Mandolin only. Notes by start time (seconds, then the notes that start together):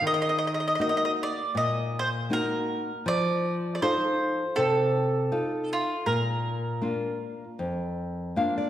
0.07 D#5
0.14 D#5
0.22 D#5
0.29 D#5
0.38 D#5
0.47 D#5
0.54 D#5
0.60 D#5
0.68 D#5
0.75 D#5
0.81 D#5
0.89 D#5
0.97 D#5
1.05 D#5
1.23 D5
1.57 D#5
1.99 C5
2.33 A#4
3.08 D5
3.75 D5
3.82 C5
4.56 A4
5.73 F4
6.06 A#4